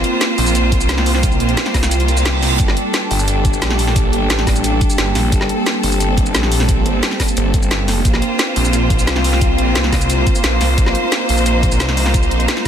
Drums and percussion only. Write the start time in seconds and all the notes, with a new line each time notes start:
0.04 closed hi-hat
0.21 snare, closed hi-hat, shaker
0.38 open hi-hat
0.47 shaker
0.55 closed hi-hat, shaker
0.72 kick, closed hi-hat, shaker
0.81 shaker
0.89 snare, closed hi-hat, shaker
0.98 snare
1.06 open hi-hat, shaker
1.15 snare
1.23 kick, closed hi-hat, shaker
1.32 shaker
1.40 closed hi-hat
1.49 closed hi-hat
1.57 snare, closed hi-hat, shaker
1.66 snare, closed hi-hat
1.74 kick, snare, open hi-hat, shaker
1.83 snare, closed hi-hat, shaker
1.91 closed hi-hat, shaker
2.00 closed hi-hat
2.08 closed hi-hat, shaker
2.17 shaker
2.26 snare, closed hi-hat, shaker
2.43 snare, open hi-hat, shaker
2.60 kick, closed hi-hat, shaker
2.68 snare
2.77 closed hi-hat
2.94 snare, closed hi-hat, shaker
3.11 open hi-hat
3.19 shaker
3.28 closed hi-hat, shaker
3.45 kick, closed hi-hat, shaker
3.53 shaker
3.62 snare, closed hi-hat, shaker
3.70 snare
3.79 open hi-hat, shaker
3.87 snare
3.96 kick, closed hi-hat, shaker
4.13 closed hi-hat
4.30 snare, closed hi-hat, shaker
4.39 snare
4.47 kick, snare, open hi-hat, shaker
4.56 closed hi-hat, shaker
4.64 closed hi-hat, shaker
4.81 kick, closed hi-hat, shaker
4.90 shaker
4.98 snare, closed hi-hat, shaker
5.15 snare, open hi-hat, shaker
5.32 kick, closed hi-hat, shaker
5.41 snare
5.49 closed hi-hat
5.66 snare, closed hi-hat, shaker
5.83 open hi-hat
5.92 shaker
6.00 closed hi-hat, shaker
6.18 kick, closed hi-hat, shaker
6.26 shaker
6.35 snare, closed hi-hat, shaker
6.43 snare
6.52 open hi-hat, shaker
6.60 snare
6.69 kick, closed hi-hat, shaker
6.86 closed hi-hat
7.03 snare, closed hi-hat, shaker
7.11 snare
7.20 kick, snare, open hi-hat, shaker
7.28 closed hi-hat, shaker
7.37 closed hi-hat, shaker
7.54 kick, closed hi-hat, shaker
7.62 shaker
7.71 snare, closed hi-hat, shaker
7.88 snare, open hi-hat, shaker
8.05 kick, closed hi-hat, shaker
8.14 snare
8.22 closed hi-hat
8.39 snare, closed hi-hat, shaker
8.56 open hi-hat
8.65 shaker
8.73 closed hi-hat, shaker
8.90 kick, closed hi-hat, shaker
8.99 shaker
9.07 snare, closed hi-hat, shaker
9.16 snare
9.24 open hi-hat, shaker
9.33 snare
9.41 kick, closed hi-hat, shaker
9.58 closed hi-hat
9.76 snare, closed hi-hat, shaker
9.84 snare
9.93 kick, snare, open hi-hat, shaker
10.01 closed hi-hat, shaker
10.10 closed hi-hat, shaker
10.27 kick, closed hi-hat, shaker
10.35 shaker
10.44 snare, closed hi-hat, shaker
10.61 snare, open hi-hat, shaker
10.78 kick, closed hi-hat, shaker
10.86 snare
10.95 closed hi-hat
11.12 snare, closed hi-hat, shaker
11.29 open hi-hat
11.38 shaker
11.46 closed hi-hat, shaker
11.63 kick, closed hi-hat, shaker
11.72 shaker
11.80 snare, closed hi-hat, shaker
11.89 snare
11.97 open hi-hat, shaker
12.06 snare
12.14 kick, closed hi-hat, shaker
12.23 shaker
12.31 closed hi-hat
12.40 closed hi-hat
12.48 snare, closed hi-hat, shaker
12.57 snare, closed hi-hat